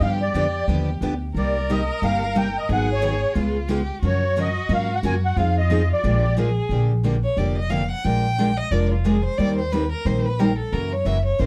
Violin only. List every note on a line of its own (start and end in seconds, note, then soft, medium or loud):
0.00 0.32 G4 medium
0.33 1.17 G4 medium
1.35 2.71 A#4 loud
2.69 3.36 G#4 loud
3.35 3.71 F4 medium
3.69 4.02 G4 medium
4.03 5.38 F#4 medium
5.36 6.01 F4 medium
5.99 6.06 F#4 medium
6.04 6.38 G4 medium
6.37 6.71 G#4 medium
7.24 7.40 C#5 medium
7.38 7.57 D5 medium
7.58 7.72 D#5 medium
7.70 7.91 F5 medium
7.91 8.06 F#5 medium
8.04 8.59 G5 medium
8.58 8.73 D#5 medium
8.71 8.91 D5 medium
8.91 9.08 F4 soft
9.06 9.24 G#4 medium
9.25 9.39 C5 medium
9.38 9.58 D5 medium
9.59 9.74 C5 medium
9.72 9.91 B4 medium
9.92 10.08 A#4 medium
10.06 10.28 C5 medium
10.26 10.41 B4 medium
10.40 10.58 A#4 medium
10.58 10.74 A4 medium
10.73 10.94 A#4 medium
10.93 11.07 C#5 medium
11.06 11.25 E5 medium
11.26 11.42 C#5 medium
11.40 11.46 C5 medium